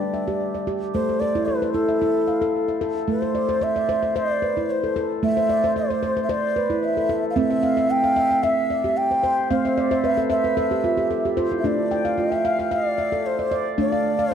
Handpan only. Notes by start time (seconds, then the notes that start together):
Already playing: A3 D4 D5
0.14 E5
0.28 G4
0.55 D5
0.67 G4
0.95 A3 A4
1.09 A4
1.22 C5
1.35 E4
1.48 A4
1.62 C5
1.74 E4
1.88 E5
2.02 E4
2.27 F5
2.42 A4
2.68 E5
2.81 A4
3.08 A3
3.22 C5
3.35 D5
3.49 C5
3.61 C5
3.76 D5
3.89 C5
4.03 C5
4.16 C5
4.42 B4
4.57 E4
4.84 A4
4.96 A4
5.23 A3
5.37 C5
5.49 D5
5.64 C5
5.76 C5
5.90 D5
6.03 C5
6.17 C5
6.29 C5
6.56 B4
6.70 E4
6.97 A4
7.09 A4
7.36 A3 C4
7.50 E5
7.63 F5
7.77 E5
8.04 F5
8.16 E5
8.31 E5
8.43 E5
8.70 D5
8.84 G4
9.11 C5
9.23 C5
9.51 A3 C4 F5
9.65 E5
9.78 D5
9.91 C5 E5
10.04 B4
10.18 A4
10.30 C5 E5
10.44 B4
10.57 A4 E5
10.71 G4
10.84 F4
10.97 G4
11.11 A4
11.25 G4
11.37 F4 C5
11.52 E4
11.64 A3 D4
11.91 G5
12.05 F5
12.18 F4
12.32 G5
12.45 F5
12.59 F5
12.71 F5
12.98 E5
13.12 A4
13.39 D5
13.51 D5
13.78 A3 D4
13.92 F5
14.19 F5